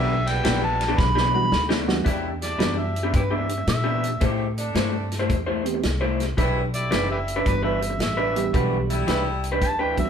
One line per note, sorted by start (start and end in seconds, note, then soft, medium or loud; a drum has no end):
0.00 0.43 B1 medium
0.00 0.14 E3 loud
0.00 0.12 G3 medium
0.00 0.13 B3 medium
0.00 0.14 B3 medium
0.00 0.13 D4 medium
0.00 0.14 D4 loud
0.00 0.13 E4 medium
0.00 0.15 G4 loud
0.00 0.29 E5 loud
0.27 0.88 G3 medium
0.27 0.88 B3 medium
0.27 0.88 D4 medium
0.27 0.89 E4 loud
0.27 0.62 G5 loud
0.27 snare soft
0.27 ride medium
0.44 0.97 A#1 loud
0.44 0.62 E3 medium
0.44 0.61 B3 medium
0.44 0.60 D4 medium
0.44 0.60 G4 loud
0.44 snare loud
0.44 ride medium
0.61 1.00 A5 medium
0.61 muted clean electric guitar stroke medium
0.81 snare soft
0.81 ride medium
0.88 1.04 E3 medium
0.88 1.04 B3 medium
0.88 1.04 D4 loud
0.88 1.03 G4 loud
0.98 1.51 B1 loud
0.98 1.34 B5 loud
0.98 kick loud
0.98 snare medium
1.15 1.32 E3 medium
1.15 1.32 B3 loud
1.15 1.33 D4 loud
1.15 1.33 G4 loud
1.15 snare medium
1.33 1.51 E3 medium
1.33 1.51 G3 medium
1.33 1.51 B3 medium
1.33 1.51 D4 medium
1.33 1.51 F#4 loud
1.33 1.64 B5 loud
1.33 muted clean electric guitar stroke medium
1.42 muted clean electric guitar stroke medium
1.52 2.05 D2 loud
1.52 snare medium
1.69 1.91 E3 medium
1.69 1.91 B3 medium
1.69 1.91 D4 loud
1.69 1.90 G4 loud
1.69 snare loud
1.88 2.06 E3 medium
1.88 2.06 G3 medium
1.88 2.06 B3 medium
1.88 2.06 D4 medium
1.88 2.06 F#4 loud
1.88 snare medium
1.96 muted clean electric guitar stroke medium
2.04 2.58 E2 medium
2.04 2.29 E3 medium
2.04 2.28 G3 medium
2.04 2.29 B3 medium
2.04 2.29 D4 medium
2.04 2.28 D4 medium
2.04 2.28 E4 loud
2.04 2.29 G4 medium
2.04 kick loud
2.04 snare soft
2.04 closed hi-hat medium
2.42 3.03 D4 medium
2.42 3.04 E4 medium
2.42 3.03 G4 medium
2.42 2.80 D5 medium
2.42 snare soft
2.42 closed hi-hat medium
2.58 3.13 F#2 medium
2.58 2.77 E3 medium
2.58 2.92 E3 medium
2.58 2.92 G3 medium
2.58 2.76 B3 medium
2.58 2.92 B3 medium
2.58 2.76 D4 medium
2.58 2.93 D4 medium
2.58 2.93 F#4 medium
2.58 2.76 G4 medium
2.58 snare loud
2.58 closed hi-hat medium
2.77 3.13 E5 medium
2.77 muted clean electric guitar stroke soft
2.96 closed hi-hat medium
3.03 3.19 E3 medium
3.03 3.19 B3 medium
3.03 3.19 D4 medium
3.03 3.19 G4 medium
3.14 3.66 G2 medium
3.14 3.22 E4 medium
3.14 3.22 G4 medium
3.14 3.35 B4 medium
3.14 kick loud
3.14 closed hi-hat medium
3.31 3.47 E3 medium
3.31 3.48 B3 medium
3.31 3.48 D4 medium
3.31 3.48 G4 medium
3.31 3.68 E5 medium
3.49 muted clean electric guitar stroke soft
3.49 closed hi-hat medium
3.58 muted clean electric guitar stroke medium
3.67 4.20 A#2 medium
3.67 4.21 E5 loud
3.67 snare loud
3.67 closed hi-hat medium
3.84 4.06 E3 medium
3.84 4.06 B3 loud
3.84 4.06 D4 loud
3.84 4.06 G4 loud
4.04 closed hi-hat medium
4.11 muted clean electric guitar stroke soft
4.21 4.74 A2 medium
4.21 4.45 A3 medium
4.21 4.43 A3 medium
4.21 4.43 C4 medium
4.21 4.45 E4 medium
4.21 4.45 G4 medium
4.21 4.44 G4 medium
4.21 4.45 C5 medium
4.21 kick loud
4.21 closed hi-hat medium
4.57 5.19 A3 medium
4.57 5.19 C4 medium
4.57 5.19 D4 loud
4.57 closed hi-hat medium
4.75 5.28 G2 medium
4.75 4.93 A3 medium
4.75 4.92 E4 medium
4.75 4.92 G4 medium
4.75 4.91 C5 medium
4.75 snare loud
4.75 closed hi-hat medium
4.93 muted clean electric guitar stroke medium
5.12 snare soft
5.12 closed hi-hat medium
5.19 5.35 A3 medium
5.19 5.35 E4 medium
5.19 5.35 G4 medium
5.19 5.35 C5 medium
5.30 5.82 E2 medium
5.30 kick loud
5.30 closed hi-hat medium
5.46 5.63 A3 medium
5.46 5.63 E4 medium
5.46 5.64 G4 medium
5.46 5.64 C5 medium
5.64 5.82 E3 medium
5.64 5.82 A3 medium
5.64 5.82 B3 medium
5.64 5.82 C4 medium
5.64 5.82 G4 medium
5.64 muted clean electric guitar stroke soft
5.64 closed hi-hat medium
5.74 muted clean electric guitar stroke soft
5.83 6.36 C2 medium
5.83 snare loud
5.83 closed hi-hat medium
6.01 6.23 A3 medium
6.01 6.22 E4 medium
6.01 6.22 G4 loud
6.01 6.22 C5 loud
6.20 snare soft
6.20 closed hi-hat medium
6.27 muted clean electric guitar stroke soft
6.37 6.90 B1 medium
6.37 6.61 E3 medium
6.37 6.59 G3 medium
6.37 6.61 D4 medium
6.37 6.60 D4 medium
6.37 6.60 E4 loud
6.37 6.61 G4 loud
6.37 6.61 B4 medium
6.37 kick loud
6.37 closed hi-hat medium
6.74 7.35 G3 medium
6.74 7.35 D4 medium
6.74 7.36 E4 medium
6.74 7.09 D5 medium
6.74 closed hi-hat medium
6.90 7.44 F#1 medium
6.90 7.09 E3 medium
6.90 7.08 D4 medium
6.90 7.08 G4 medium
6.90 7.07 B4 medium
6.90 snare loud
6.90 closed hi-hat medium
7.08 7.18 G4 medium
7.08 7.18 B4 medium
7.08 7.45 E5 medium
7.08 muted clean electric guitar stroke soft
7.28 closed hi-hat medium
7.36 7.51 E3 medium
7.36 7.51 D4 medium
7.36 7.51 G4 medium
7.36 7.51 B4 loud
7.46 7.98 G1 medium
7.46 8.29 E3 medium
7.46 8.29 G3 medium
7.46 8.29 B3 medium
7.46 8.29 D4 medium
7.46 8.29 F#4 medium
7.46 7.64 B4 medium
7.46 kick loud
7.46 closed hi-hat medium
7.63 7.80 E3 medium
7.63 7.80 D4 medium
7.63 7.80 G4 medium
7.63 7.80 B4 loud
7.63 7.99 E5 medium
7.81 muted clean electric guitar stroke soft
7.81 closed hi-hat medium
7.90 muted clean electric guitar stroke soft
7.99 8.52 A1 medium
7.99 8.53 E5 loud
7.99 snare loud
7.99 closed hi-hat medium
8.17 8.39 E3 medium
8.17 8.38 D4 medium
8.17 8.38 G4 medium
8.17 8.38 B4 loud
8.36 9.04 E3 medium
8.36 9.04 G3 medium
8.36 9.04 B3 medium
8.36 9.04 D4 medium
8.36 9.05 G4 medium
8.36 closed hi-hat medium
8.44 muted clean electric guitar stroke medium
8.53 9.06 B1 loud
8.53 8.77 E3 medium
8.53 8.75 G3 medium
8.53 8.75 D4 medium
8.53 8.77 D4 medium
8.53 8.76 F#4 medium
8.53 8.78 G4 medium
8.53 8.78 B4 loud
8.53 kick loud
8.53 closed hi-hat medium
8.89 9.51 G3 medium
8.89 9.51 D4 medium
8.89 9.51 E4 loud
8.89 closed hi-hat medium
9.07 9.60 C2 medium
9.07 9.25 E3 medium
9.07 9.24 D4 medium
9.07 9.24 G4 medium
9.07 9.23 B4 medium
9.07 snare loud
9.07 closed hi-hat medium
9.24 muted clean electric guitar stroke soft
9.44 closed hi-hat medium
9.52 9.67 E3 medium
9.52 9.67 D4 medium
9.52 9.67 G4 medium
9.52 9.67 B4 medium
9.62 10.10 D2 medium
9.62 9.82 A5 loud
9.62 kick loud
9.62 closed hi-hat medium
9.79 9.95 E3 medium
9.79 9.96 D4 medium
9.79 9.96 G4 medium
9.79 9.97 B4 loud
9.79 9.97 G5 medium
9.97 10.10 E3 medium
9.97 10.10 G3 medium
9.97 10.10 B3 medium
9.97 10.10 D4 medium
9.97 10.10 F#4 medium
9.97 10.10 E5 medium
9.97 muted clean electric guitar stroke soft
9.97 kick medium
9.97 closed hi-hat medium
10.05 muted clean electric guitar stroke soft